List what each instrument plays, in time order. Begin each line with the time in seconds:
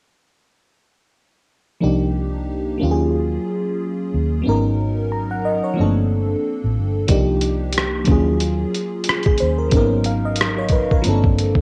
1.81 fingered electric bass C2, fm electric piano F3 A#3 D4 D#4 G4
2.78 fm electric piano F#3 A#3 C#4
2.83 fingered electric bass D#2, fm electric piano F4 G4
2.91 fm electric piano G#4
4.14 fingered electric bass D#2
4.42 fm electric piano F#3 B3 C#4
4.47 fingered electric bass G#1, fm electric piano D#4 A#4
5.12 fm electric piano A#5
5.31 fm electric piano F#5
5.45 fm electric piano D#5
5.64 fm electric piano C#5
5.74 fm electric piano F3 A3 C4
5.79 fingered electric bass G1, fm electric piano A#3 D4 A4
6.64 fingered electric bass A1
6.78 fingered electric bass G1
7.07 fingered electric bass C2, fm electric piano F3 A#3 D4 D#4 G4, kick, closed hi-hat
7.41 closed hi-hat
7.73 closed hi-hat
7.78 cross-stick
8.04 fm electric piano F#3 A#3 C#4, kick, closed hi-hat
8.09 fingered electric bass D#2, fm electric piano F4 G#4
8.40 closed hi-hat
8.75 closed hi-hat
9.04 closed hi-hat
9.09 cross-stick
9.23 fm electric piano G#4, kick, closed hi-hat
9.38 fm electric piano C5, closed hi-hat
9.42 fingered electric bass D#2
9.58 fm electric piano A#4
9.70 fingered electric bass G#1, fm electric piano F#3 A#3 C#4, kick, closed hi-hat
9.75 fm electric piano B3 D#4 A#4
10.04 fm electric piano F5, closed hi-hat
10.25 fm electric piano D#5
10.36 closed hi-hat
10.41 cross-stick
10.58 fm electric piano C#5
10.69 fm electric piano B4, kick, closed hi-hat
10.91 fm electric piano A#4, kick
11.02 fm electric piano F3 A#3 C4, closed hi-hat
11.06 fingered electric bass G1, fm electric piano D4 A4
11.24 kick
11.39 closed hi-hat
11.55 kick